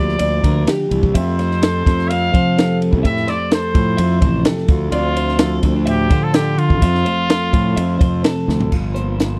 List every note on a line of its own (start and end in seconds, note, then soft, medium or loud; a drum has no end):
0.00 0.18 D2 medium
0.00 0.41 D3 medium
0.00 1.14 F3 medium
0.00 1.12 A#3 medium
0.00 0.19 D4 medium
0.00 0.20 G4 medium
0.00 1.16 G4 medium
0.00 0.66 D5 loud
0.09 snare soft
0.19 0.42 D2 medium
0.19 1.12 D4 medium
0.19 0.43 D5 medium
0.19 ride loud
0.42 0.65 D2 medium
0.42 0.66 D3 medium
0.42 0.67 A#4 medium
0.42 kick medium
0.42 ride medium
0.67 0.90 D3 medium
0.67 1.15 G4 medium
0.67 snare loud
0.67 ride medium
0.90 1.13 C2 loud
0.90 1.15 E3 medium
0.90 ride medium
1.03 kick medium
1.13 3.03 F2 medium
1.13 1.82 F2 medium
1.13 1.87 F3 medium
1.13 1.39 A3 medium
1.13 2.12 C4 medium
1.13 2.58 G4 medium
1.13 2.10 C5 medium
1.13 1.39 E5 medium
1.13 kick medium
1.13 ride loud
1.39 3.29 A3 medium
1.39 1.62 C5 medium
1.39 snare soft
1.39 ride medium
1.51 snare soft
1.62 2.09 A4 medium
1.62 snare loud
1.62 ride loud
1.86 2.29 F2 medium
1.86 3.74 F3 medium
1.86 kick medium
1.86 snare soft
1.86 ride medium
1.99 snare soft
2.09 2.82 C4 medium
2.09 2.33 E5 medium
2.09 2.80 F5 loud
2.09 ride loud
2.33 3.05 C3 medium
2.33 2.94 F3 medium
2.33 2.57 C5 medium
2.33 kick medium
2.33 ride medium
2.58 3.02 G4 medium
2.58 3.04 A4 medium
2.58 snare loud
2.58 ride medium
2.82 3.99 C4 medium
2.82 ride medium
2.93 3.03 C2 medium
2.93 kick medium
3.03 4.70 F2 medium
3.03 3.26 A2 medium
3.03 4.45 G4 medium
3.03 3.27 E5 medium
3.03 3.31 E5 loud
3.03 kick medium
3.03 ride medium
3.17 snare soft
3.27 4.92 A3 medium
3.27 3.51 C5 medium
3.27 3.52 D5 medium
3.27 snare soft
3.27 ride medium
3.51 3.98 A4 medium
3.51 4.43 C5 medium
3.51 snare loud
3.51 ride medium
3.75 3.96 A2 medium
3.75 5.41 F3 medium
3.75 kick loud
3.75 ride medium
3.97 4.20 F2 medium
3.97 4.67 E4 medium
3.97 4.20 E5 medium
3.97 ride loud
4.20 4.43 A1 medium
4.20 4.68 C3 medium
4.20 4.45 C5 medium
4.20 kick medium
4.20 ride medium
4.45 4.67 G4 medium
4.45 4.93 A4 medium
4.45 snare loud
4.45 ride medium
4.57 snare soft
4.68 4.90 D2 medium
4.68 6.55 D3 medium
4.68 6.11 F4 medium
4.68 kick loud
4.68 ride medium
4.92 5.59 D2 medium
4.92 5.63 C4 medium
4.92 5.59 F4 loud
4.92 5.16 D5 medium
4.92 ride medium
5.16 5.39 C5 medium
5.16 ride medium
5.29 snare soft
5.39 7.52 F3 medium
5.39 5.85 A4 medium
5.39 snare loud
5.39 ride loud
5.63 6.07 D2 medium
5.63 5.76 C4 medium
5.63 kick medium
5.63 ride medium
5.76 6.34 D4 soft
5.86 6.55 A2 medium
5.86 6.25 G4 loud
5.86 6.10 E5 medium
5.86 ride medium
6.10 6.72 D3 medium
6.10 8.49 F4 medium
6.10 6.34 C5 medium
6.10 kick medium
6.10 ride medium
6.23 6.36 A4 loud
6.34 6.56 D4 medium
6.34 6.60 G4 medium
6.34 6.82 A4 medium
6.34 snare loud
6.34 ride loud
6.57 6.79 D3 medium
6.57 6.79 D4 medium
6.57 8.25 F4 loud
6.57 ride medium
6.70 6.81 A1 medium
6.70 kick loud
6.82 7.04 F2 medium
6.82 8.47 F2 medium
6.82 7.76 C4 medium
6.82 7.06 E5 medium
6.82 kick loud
6.82 ride medium
6.95 snare soft
7.05 8.73 A3 medium
7.05 7.29 C5 medium
7.05 ride medium
7.29 7.77 A4 medium
7.29 snare loud
7.29 ride medium
7.53 7.75 A2 medium
7.53 9.39 F3 medium
7.53 kick medium
7.53 ride medium
7.76 7.99 F2 loud
7.76 8.73 C4 medium
7.76 7.99 E5 medium
7.76 ride medium
7.99 8.22 F2 medium
7.99 8.72 C3 medium
7.99 8.24 C5 medium
7.99 kick medium
7.99 ride medium
8.24 8.72 A4 medium
8.24 snare loud
8.24 ride medium
8.48 8.70 D2 loud
8.48 8.72 F2 medium
8.48 snare medium
8.60 floor tom medium
8.72 9.39 G1 medium
8.72 9.39 G2 medium
8.72 9.20 F4 medium
8.72 kick medium
8.72 crash medium
8.95 9.39 A#3 soft
8.95 9.39 C5 medium
8.95 closed hi-hat medium
9.20 9.39 F4 soft
9.20 snare loud
9.20 closed hi-hat medium